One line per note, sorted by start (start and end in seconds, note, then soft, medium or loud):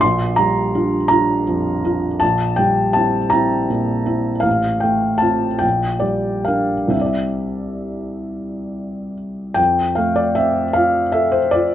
0.01 2.18 A#1 medium
0.01 0.37 C6 medium
0.36 0.96 G3 soft
0.36 1.07 A#5 medium
0.75 1.07 D4 soft
0.75 1.07 F4 soft
1.08 1.43 D4 soft
1.08 1.44 F4 soft
1.08 2.20 A#5 medium
1.48 2.07 F2 soft
1.84 2.18 D4 soft
1.84 2.18 F4 soft
2.20 4.42 A#1 medium
2.20 2.58 A5 medium
2.56 3.19 G3 soft
2.56 2.95 G5 medium
2.93 3.29 C4 soft
2.93 3.30 E4 soft
2.93 3.32 A5 medium
3.30 3.66 C4 soft
3.30 3.66 E4 soft
3.30 3.68 A#5 medium
3.70 4.30 A#2 soft
4.06 4.41 C4 soft
4.06 4.41 E4 soft
4.40 5.58 A1 soft
4.40 4.82 F5 medium
4.80 5.47 A3 soft
4.80 5.22 G5 medium
5.18 5.58 C4 soft
5.18 5.58 F4 soft
5.18 5.60 A5 medium
5.59 6.89 A#1 soft
5.59 6.02 G5 medium
6.00 6.74 G3 soft
6.00 6.45 D5 medium
6.45 6.90 D4 soft
6.45 6.90 A#4 soft
6.45 6.92 F5 medium
6.88 9.51 C2 soft
6.88 9.51 G3 soft
6.88 9.52 C4 soft
6.88 9.52 G4 soft
6.88 7.00 E5 soft
7.01 7.10 D5 soft
7.06 9.13 E5 soft
9.54 11.75 F2 medium
9.54 9.97 G5 medium
9.95 10.62 A3 soft
9.95 10.17 F5 medium
10.16 10.37 D5 medium
10.35 11.01 C4 soft
10.35 10.76 E5 medium
10.73 11.39 F4 soft
10.73 11.14 F5 medium
11.12 11.75 A4 soft
11.12 11.34 E5 medium
11.32 11.53 C5 medium
11.51 11.75 F4 soft
11.51 11.75 D5 medium